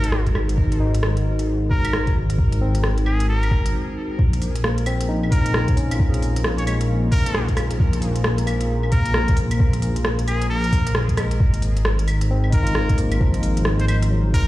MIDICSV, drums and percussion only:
0, 0, Header, 1, 2, 480
1, 0, Start_track
1, 0, Tempo, 451128
1, 616, Time_signature, 4, 2, 24, 8
1, 15402, End_track
2, 0, Start_track
2, 0, Title_t, "Drums"
2, 39, Note_on_c, 9, 42, 52
2, 131, Note_on_c, 9, 37, 100
2, 146, Note_off_c, 9, 42, 0
2, 237, Note_off_c, 9, 37, 0
2, 280, Note_on_c, 9, 36, 57
2, 283, Note_on_c, 9, 42, 29
2, 373, Note_on_c, 9, 37, 60
2, 373, Note_on_c, 9, 75, 35
2, 386, Note_off_c, 9, 36, 0
2, 389, Note_off_c, 9, 42, 0
2, 480, Note_off_c, 9, 37, 0
2, 480, Note_off_c, 9, 75, 0
2, 524, Note_on_c, 9, 42, 49
2, 613, Note_on_c, 9, 36, 110
2, 630, Note_off_c, 9, 42, 0
2, 719, Note_off_c, 9, 36, 0
2, 765, Note_on_c, 9, 42, 41
2, 871, Note_off_c, 9, 42, 0
2, 1005, Note_on_c, 9, 42, 52
2, 1094, Note_on_c, 9, 37, 97
2, 1112, Note_off_c, 9, 42, 0
2, 1201, Note_off_c, 9, 37, 0
2, 1243, Note_on_c, 9, 42, 38
2, 1350, Note_off_c, 9, 42, 0
2, 1481, Note_on_c, 9, 42, 51
2, 1588, Note_off_c, 9, 42, 0
2, 1816, Note_on_c, 9, 36, 94
2, 1923, Note_off_c, 9, 36, 0
2, 1965, Note_on_c, 9, 42, 54
2, 1965, Note_on_c, 9, 75, 64
2, 2057, Note_on_c, 9, 37, 100
2, 2071, Note_off_c, 9, 42, 0
2, 2071, Note_off_c, 9, 75, 0
2, 2163, Note_off_c, 9, 37, 0
2, 2204, Note_on_c, 9, 42, 29
2, 2205, Note_on_c, 9, 36, 98
2, 2311, Note_off_c, 9, 42, 0
2, 2312, Note_off_c, 9, 36, 0
2, 2445, Note_on_c, 9, 42, 50
2, 2536, Note_on_c, 9, 36, 114
2, 2551, Note_off_c, 9, 42, 0
2, 2643, Note_off_c, 9, 36, 0
2, 2686, Note_on_c, 9, 42, 45
2, 2792, Note_off_c, 9, 42, 0
2, 2923, Note_on_c, 9, 42, 54
2, 3017, Note_on_c, 9, 37, 98
2, 3030, Note_off_c, 9, 42, 0
2, 3123, Note_off_c, 9, 37, 0
2, 3167, Note_on_c, 9, 42, 40
2, 3257, Note_on_c, 9, 75, 65
2, 3273, Note_off_c, 9, 42, 0
2, 3364, Note_off_c, 9, 75, 0
2, 3407, Note_on_c, 9, 42, 54
2, 3514, Note_off_c, 9, 42, 0
2, 3650, Note_on_c, 9, 42, 30
2, 3650, Note_on_c, 9, 75, 53
2, 3737, Note_on_c, 9, 36, 99
2, 3756, Note_off_c, 9, 42, 0
2, 3756, Note_off_c, 9, 75, 0
2, 3843, Note_off_c, 9, 36, 0
2, 3891, Note_on_c, 9, 42, 57
2, 3998, Note_off_c, 9, 42, 0
2, 4457, Note_on_c, 9, 36, 120
2, 4563, Note_off_c, 9, 36, 0
2, 4611, Note_on_c, 9, 42, 44
2, 4699, Note_on_c, 9, 46, 69
2, 4717, Note_off_c, 9, 42, 0
2, 4805, Note_off_c, 9, 46, 0
2, 4847, Note_on_c, 9, 42, 58
2, 4937, Note_on_c, 9, 37, 102
2, 4953, Note_off_c, 9, 42, 0
2, 5044, Note_off_c, 9, 37, 0
2, 5085, Note_on_c, 9, 42, 43
2, 5173, Note_on_c, 9, 46, 74
2, 5173, Note_on_c, 9, 75, 66
2, 5191, Note_off_c, 9, 42, 0
2, 5280, Note_off_c, 9, 46, 0
2, 5280, Note_off_c, 9, 75, 0
2, 5327, Note_on_c, 9, 42, 58
2, 5433, Note_off_c, 9, 42, 0
2, 5570, Note_on_c, 9, 75, 38
2, 5659, Note_on_c, 9, 36, 103
2, 5660, Note_on_c, 9, 46, 74
2, 5676, Note_off_c, 9, 75, 0
2, 5765, Note_off_c, 9, 36, 0
2, 5766, Note_off_c, 9, 46, 0
2, 5808, Note_on_c, 9, 42, 58
2, 5897, Note_on_c, 9, 37, 109
2, 5914, Note_off_c, 9, 42, 0
2, 6003, Note_off_c, 9, 37, 0
2, 6044, Note_on_c, 9, 42, 34
2, 6048, Note_on_c, 9, 36, 107
2, 6140, Note_on_c, 9, 46, 71
2, 6151, Note_off_c, 9, 42, 0
2, 6155, Note_off_c, 9, 36, 0
2, 6246, Note_off_c, 9, 46, 0
2, 6292, Note_on_c, 9, 42, 56
2, 6292, Note_on_c, 9, 75, 54
2, 6381, Note_on_c, 9, 36, 120
2, 6398, Note_off_c, 9, 42, 0
2, 6398, Note_off_c, 9, 75, 0
2, 6488, Note_off_c, 9, 36, 0
2, 6532, Note_on_c, 9, 42, 47
2, 6623, Note_on_c, 9, 46, 67
2, 6639, Note_off_c, 9, 42, 0
2, 6729, Note_off_c, 9, 46, 0
2, 6771, Note_on_c, 9, 42, 56
2, 6856, Note_on_c, 9, 37, 109
2, 6877, Note_off_c, 9, 42, 0
2, 6962, Note_off_c, 9, 37, 0
2, 7005, Note_on_c, 9, 42, 43
2, 7098, Note_on_c, 9, 46, 73
2, 7098, Note_on_c, 9, 75, 67
2, 7112, Note_off_c, 9, 42, 0
2, 7205, Note_off_c, 9, 46, 0
2, 7205, Note_off_c, 9, 75, 0
2, 7244, Note_on_c, 9, 42, 58
2, 7350, Note_off_c, 9, 42, 0
2, 7575, Note_on_c, 9, 46, 69
2, 7578, Note_on_c, 9, 36, 109
2, 7681, Note_off_c, 9, 46, 0
2, 7685, Note_off_c, 9, 36, 0
2, 7728, Note_on_c, 9, 42, 59
2, 7815, Note_on_c, 9, 37, 110
2, 7835, Note_off_c, 9, 42, 0
2, 7922, Note_off_c, 9, 37, 0
2, 7964, Note_on_c, 9, 42, 32
2, 7967, Note_on_c, 9, 36, 65
2, 8052, Note_on_c, 9, 37, 65
2, 8052, Note_on_c, 9, 46, 72
2, 8052, Note_on_c, 9, 75, 54
2, 8070, Note_off_c, 9, 42, 0
2, 8073, Note_off_c, 9, 36, 0
2, 8158, Note_off_c, 9, 37, 0
2, 8158, Note_off_c, 9, 46, 0
2, 8158, Note_off_c, 9, 75, 0
2, 8199, Note_on_c, 9, 42, 57
2, 8297, Note_on_c, 9, 36, 127
2, 8306, Note_off_c, 9, 42, 0
2, 8404, Note_off_c, 9, 36, 0
2, 8440, Note_on_c, 9, 42, 45
2, 8531, Note_on_c, 9, 46, 71
2, 8546, Note_off_c, 9, 42, 0
2, 8638, Note_off_c, 9, 46, 0
2, 8678, Note_on_c, 9, 42, 57
2, 8770, Note_on_c, 9, 37, 112
2, 8784, Note_off_c, 9, 42, 0
2, 8876, Note_off_c, 9, 37, 0
2, 8918, Note_on_c, 9, 42, 43
2, 9013, Note_on_c, 9, 46, 69
2, 9013, Note_on_c, 9, 75, 64
2, 9025, Note_off_c, 9, 42, 0
2, 9119, Note_off_c, 9, 46, 0
2, 9119, Note_off_c, 9, 75, 0
2, 9158, Note_on_c, 9, 42, 56
2, 9264, Note_off_c, 9, 42, 0
2, 9398, Note_on_c, 9, 75, 35
2, 9489, Note_on_c, 9, 46, 71
2, 9494, Note_on_c, 9, 36, 112
2, 9505, Note_off_c, 9, 75, 0
2, 9595, Note_off_c, 9, 46, 0
2, 9601, Note_off_c, 9, 36, 0
2, 9635, Note_on_c, 9, 42, 55
2, 9726, Note_on_c, 9, 37, 112
2, 9742, Note_off_c, 9, 42, 0
2, 9833, Note_off_c, 9, 37, 0
2, 9875, Note_on_c, 9, 42, 31
2, 9883, Note_on_c, 9, 36, 115
2, 9966, Note_on_c, 9, 46, 69
2, 9982, Note_off_c, 9, 42, 0
2, 9989, Note_off_c, 9, 36, 0
2, 10073, Note_off_c, 9, 46, 0
2, 10119, Note_on_c, 9, 42, 58
2, 10119, Note_on_c, 9, 75, 51
2, 10213, Note_on_c, 9, 36, 127
2, 10226, Note_off_c, 9, 42, 0
2, 10226, Note_off_c, 9, 75, 0
2, 10319, Note_off_c, 9, 36, 0
2, 10356, Note_on_c, 9, 42, 43
2, 10450, Note_on_c, 9, 46, 72
2, 10463, Note_off_c, 9, 42, 0
2, 10557, Note_off_c, 9, 46, 0
2, 10598, Note_on_c, 9, 42, 54
2, 10688, Note_on_c, 9, 37, 109
2, 10705, Note_off_c, 9, 42, 0
2, 10795, Note_off_c, 9, 37, 0
2, 10840, Note_on_c, 9, 42, 41
2, 10934, Note_on_c, 9, 46, 72
2, 10934, Note_on_c, 9, 75, 60
2, 10946, Note_off_c, 9, 42, 0
2, 11040, Note_off_c, 9, 46, 0
2, 11040, Note_off_c, 9, 75, 0
2, 11083, Note_on_c, 9, 42, 54
2, 11189, Note_off_c, 9, 42, 0
2, 11321, Note_on_c, 9, 42, 30
2, 11411, Note_on_c, 9, 36, 111
2, 11413, Note_on_c, 9, 46, 74
2, 11428, Note_off_c, 9, 42, 0
2, 11518, Note_off_c, 9, 36, 0
2, 11520, Note_off_c, 9, 46, 0
2, 11562, Note_on_c, 9, 42, 55
2, 11648, Note_on_c, 9, 37, 113
2, 11669, Note_off_c, 9, 42, 0
2, 11754, Note_off_c, 9, 37, 0
2, 11800, Note_on_c, 9, 36, 66
2, 11801, Note_on_c, 9, 42, 31
2, 11889, Note_on_c, 9, 37, 67
2, 11889, Note_on_c, 9, 46, 75
2, 11889, Note_on_c, 9, 75, 49
2, 11906, Note_off_c, 9, 36, 0
2, 11908, Note_off_c, 9, 42, 0
2, 11995, Note_off_c, 9, 37, 0
2, 11995, Note_off_c, 9, 46, 0
2, 11995, Note_off_c, 9, 75, 0
2, 12036, Note_on_c, 9, 42, 54
2, 12130, Note_on_c, 9, 36, 121
2, 12142, Note_off_c, 9, 42, 0
2, 12237, Note_off_c, 9, 36, 0
2, 12275, Note_on_c, 9, 42, 42
2, 12366, Note_on_c, 9, 46, 76
2, 12381, Note_off_c, 9, 42, 0
2, 12472, Note_off_c, 9, 46, 0
2, 12519, Note_on_c, 9, 42, 53
2, 12608, Note_on_c, 9, 37, 104
2, 12626, Note_off_c, 9, 42, 0
2, 12714, Note_off_c, 9, 37, 0
2, 12758, Note_on_c, 9, 42, 41
2, 12850, Note_on_c, 9, 46, 75
2, 12850, Note_on_c, 9, 75, 61
2, 12864, Note_off_c, 9, 42, 0
2, 12956, Note_off_c, 9, 46, 0
2, 12956, Note_off_c, 9, 75, 0
2, 12995, Note_on_c, 9, 42, 53
2, 13102, Note_off_c, 9, 42, 0
2, 13235, Note_on_c, 9, 75, 34
2, 13326, Note_on_c, 9, 46, 74
2, 13331, Note_on_c, 9, 36, 107
2, 13341, Note_off_c, 9, 75, 0
2, 13433, Note_off_c, 9, 46, 0
2, 13438, Note_off_c, 9, 36, 0
2, 13478, Note_on_c, 9, 42, 55
2, 13566, Note_on_c, 9, 37, 106
2, 13585, Note_off_c, 9, 42, 0
2, 13672, Note_off_c, 9, 37, 0
2, 13719, Note_on_c, 9, 42, 31
2, 13721, Note_on_c, 9, 36, 107
2, 13810, Note_on_c, 9, 46, 76
2, 13825, Note_off_c, 9, 42, 0
2, 13827, Note_off_c, 9, 36, 0
2, 13916, Note_off_c, 9, 46, 0
2, 13955, Note_on_c, 9, 42, 53
2, 13955, Note_on_c, 9, 75, 52
2, 14054, Note_on_c, 9, 36, 118
2, 14061, Note_off_c, 9, 42, 0
2, 14061, Note_off_c, 9, 75, 0
2, 14160, Note_off_c, 9, 36, 0
2, 14193, Note_on_c, 9, 42, 42
2, 14289, Note_on_c, 9, 46, 78
2, 14300, Note_off_c, 9, 42, 0
2, 14395, Note_off_c, 9, 46, 0
2, 14438, Note_on_c, 9, 42, 54
2, 14524, Note_on_c, 9, 37, 98
2, 14544, Note_off_c, 9, 42, 0
2, 14630, Note_off_c, 9, 37, 0
2, 14679, Note_on_c, 9, 42, 40
2, 14773, Note_on_c, 9, 46, 77
2, 14773, Note_on_c, 9, 75, 66
2, 14785, Note_off_c, 9, 42, 0
2, 14879, Note_off_c, 9, 46, 0
2, 14879, Note_off_c, 9, 75, 0
2, 14923, Note_on_c, 9, 42, 53
2, 15030, Note_off_c, 9, 42, 0
2, 15257, Note_on_c, 9, 36, 107
2, 15258, Note_on_c, 9, 46, 75
2, 15363, Note_off_c, 9, 36, 0
2, 15364, Note_off_c, 9, 46, 0
2, 15402, End_track
0, 0, End_of_file